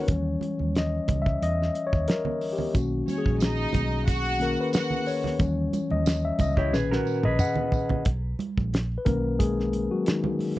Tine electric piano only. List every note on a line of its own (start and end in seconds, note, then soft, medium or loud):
0.00 0.10 D#3 soft
0.00 0.10 D#4 medium
0.00 0.37 C#5 medium
0.08 2.70 E3 medium
0.08 2.70 G3 soft
0.08 2.71 C#4 medium
0.78 1.22 D#5 medium
1.22 1.43 E5 medium
1.43 1.83 D#5 loud
1.87 2.09 C#5 medium
2.08 2.54 A#4 medium
2.53 2.75 G4 medium
2.74 3.19 D#3 medium
2.74 3.20 A#3 soft
2.74 3.20 C#4 medium
2.74 3.20 F#4 medium
3.18 3.81 G#4 medium
4.39 4.70 D#3 medium
4.39 4.70 A#3 soft
4.39 4.70 C#4 medium
4.39 4.60 A#4 medium
4.61 5.09 B4 medium
5.07 5.94 C#5 medium
5.39 6.69 E3 medium
5.39 6.69 G3 medium
5.39 6.69 C#4 medium
5.91 6.26 D#5 medium
6.25 6.39 E5 medium
6.41 6.59 D#5 medium
6.58 6.74 C#5 medium
6.72 7.69 A#2 medium
6.72 7.69 D#3 medium
6.72 7.69 C#4 medium
6.72 7.26 B4 medium
7.25 7.40 D#5 loud
7.40 8.03 F#5 loud
8.98 9.05 B4 medium
9.05 9.51 D#3 soft
9.05 9.38 A#3 medium
9.05 9.52 C#4 medium
9.05 9.40 A#4 medium
9.39 9.88 G#3 medium
9.39 9.87 G#4 loud
9.91 10.06 F#3 medium
9.91 10.07 F#4 medium
10.06 10.54 D#3 medium
10.06 10.54 D#4 medium